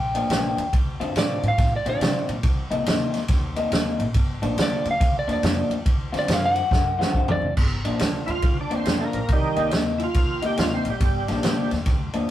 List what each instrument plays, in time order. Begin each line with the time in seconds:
Already playing: upright bass A#1, lead electric guitar G5
0.15 clean electric guitar G2 F3 A#3 D4, ride
0.30 upright bass A#1, clean electric guitar G2 F3 A#3 D4, snare, ride
0.57 upright bass D#2, ride
0.73 upright bass D2, kick, ride
1.00 upright bass F#2, clean electric guitar D3 F#3 C4 F4, ride
1.15 upright bass A2, clean electric guitar D3 F#3 C4 F4, lead electric guitar D5, snare, ride
1.43 upright bass A2, ride
1.48 lead electric guitar F5
1.58 upright bass A2, kick, snare, ride
1.76 lead electric guitar D5
1.86 upright bass A#2, clean electric guitar D3 F#3 C4 F4, lead electric guitar D5, ride
2.01 upright bass C3, clean electric guitar D3 F#3 C4 F4, snare, ride
2.29 upright bass A#2, ride
2.43 upright bass C2, kick, ride
2.71 upright bass C2, clean electric guitar C3 G3 A#3 D#4, ride
2.86 upright bass D#2, clean electric guitar C3 G3 A#3 D#4, snare, ride
3.14 snare, ride
3.28 upright bass D#2, kick, snare, ride
3.56 clean electric guitar C3 G3 A#3 D#4, ride
3.72 upright bass D#2, clean electric guitar C3 G3 A#3 D#4, snare, ride
3.99 upright bass A#1, ride
4.14 upright bass G1, kick, ride
4.42 upright bass A#1, clean electric guitar G2 F3 A#3 D4, ride
4.57 upright bass D2, clean electric guitar G2 F3 A#3 D4, snare, ride
4.63 lead electric guitar D5
4.85 upright bass D2, ride
4.91 lead electric guitar F5
5.00 upright bass D2, kick, ride
5.19 lead electric guitar D5
5.27 upright bass D#2, clean electric guitar G2 F3 A#3 D4, ride
5.33 lead electric guitar D5
5.42 upright bass F2, clean electric guitar G2 F3 A#3 D4, snare, ride
5.70 upright bass D#2, ride
5.85 upright bass D2, kick, ride
6.12 upright bass D2, clean electric guitar D3 F#3 C4 F4, snare, ride
6.19 lead electric guitar D5
6.28 upright bass F#2, clean electric guitar D3 F#3 C4 F4, snare, ride
6.33 lead electric guitar F5
6.46 lead electric guitar F#5
6.55 ride
6.71 upright bass F#2, kick, snare
6.99 clean electric guitar D3 F#3 C4 F4, snare
7.13 upright bass F#2, clean electric guitar D3 F#3 C4 F4, kick
7.28 lead electric guitar D5, floor tom
7.42 upright bass C2
7.57 upright bass G1, kick, crash
7.85 upright bass A#1, clean electric guitar G2 F3 A#3 D4, ride
7.99 upright bass D2, clean electric guitar G2 F3 A#3 D4, snare, ride
8.26 upright bass D2, tonewheel organ E4 F4, ride
8.42 upright bass D2, kick, ride
8.61 tonewheel organ D4
8.71 upright bass D#2, clean electric guitar G2 F3 A#3 D4, ride
8.76 tonewheel organ C4
8.85 upright bass F2, clean electric guitar G2 F3 A#3 D4, snare, ride
9.01 tonewheel organ A3 A#3
9.13 upright bass A#1, ride
9.28 upright bass C2, kick, ride
9.33 tonewheel organ D#3 G3
9.56 upright bass C2, clean electric guitar C3 G3 A#3 D#4, ride
9.71 upright bass D#2, clean electric guitar C3 G3 A#3 D#4, snare, ride
9.98 tonewheel organ E4, ride
10.04 tonewheel organ F4
10.14 upright bass D#2, kick, ride
10.42 clean electric guitar C3 G3 A#3 D#4, ride
10.46 tonewheel organ G4
10.57 upright bass D#2, clean electric guitar C3 G3 A#3 D#4, tonewheel organ F4, snare, ride
10.74 tonewheel organ C4
10.85 upright bass A#1, ride
10.90 tonewheel organ G3
11.00 upright bass G1, kick, ride
11.28 upright bass A#1, clean electric guitar G2 F3 A#3 D4, snare, ride
11.43 upright bass D2, clean electric guitar G2 F3 A#3 D4, snare, ride
11.71 upright bass D2, snare, ride
11.86 upright bass D2, kick, snare, ride
12.13 upright bass D#2, clean electric guitar G2 F3 A#3 D4, ride